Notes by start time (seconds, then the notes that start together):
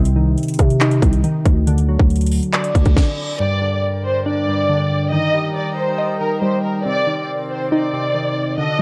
Already playing: C2 C3
0.05 closed hi-hat
0.16 D#3
0.38 closed hi-hat
0.43 closed hi-hat
0.48 closed hi-hat
0.54 closed hi-hat
0.59 C3, kick, closed hi-hat
0.70 closed hi-hat
0.81 D#4, clap, closed hi-hat
0.91 closed hi-hat
1.02 C2 C3, kick, closed hi-hat
1.13 closed hi-hat
1.24 D#3, closed hi-hat
1.45 D2, kick, closed hi-hat
1.67 D3, closed hi-hat
1.78 closed hi-hat
1.89 F#3
1.99 D2, kick
2.10 closed hi-hat
2.16 closed hi-hat
2.21 closed hi-hat
2.26 closed hi-hat
2.32 open hi-hat
2.43 closed hi-hat
2.53 D5, clap, closed hi-hat, reverse cymbal
2.64 closed hi-hat
2.75 D2 D3, kick, closed hi-hat
2.85 D2, kick, closed hi-hat
2.97 kick, snare
3.40 G2 A#4 D5 G5
3.61 D3
4.04 C5
4.26 D4 D5
4.48 G2
4.69 D3
5.12 D#3 D#4 A#4 D#5 A#5
5.34 G3
5.55 D5
5.77 C5
5.98 D#5
6.20 D#3 A#4
6.42 G3 C5
6.64 A#4
6.85 C3 C4 C5 D5
7.07 D#3
7.50 C5
7.71 D#4 D5
7.93 C3
8.15 D#3
8.58 D3 F#4 A4 D#5 F#5 A5